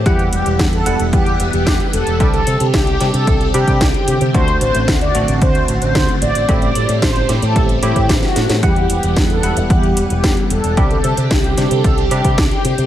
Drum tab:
HH |xxxxxxxxxxxxxxxx|xxxxxxxxxxxxxxxx|xxxxxxxxxxxxxxxx|xxxxxxxxxxxxxxxx|
SD |----o-------o---|----o-o-----o---|----o-------o---|----o-o-----oooo|
BD |o---o---o---o---|o---o---o--oo---|o---o---o---o---|o---o---o--oo---|

HH |xxxxxxxxxxxxxxxx|xxxxxxxxxxxxxxxx|
SD |----o-------o---|----o-o-----o---|
BD |o---o---o---o---|o---o---o--oo---|